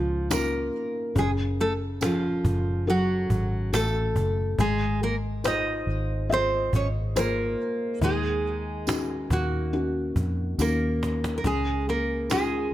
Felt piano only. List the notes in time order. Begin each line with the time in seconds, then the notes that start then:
Already playing: C#3 C#4 D#4 F4
0.30 C#4 D#4 F4
1.15 C#3
2.01 C#4 G#4 A4
2.87 F#4 G#4 A4
3.73 F#4 A4
4.58 G#3
5.44 F4 G#4 C5
6.29 F4 G#4 D#5
7.16 F4 G#4 C5
8.02 D#3
8.87 C#4 D#4 F#4
9.73 C#4 D#4 F#4
10.59 C#4 D#4 F#4
11.44 C#3
12.30 C#4 D#4 F4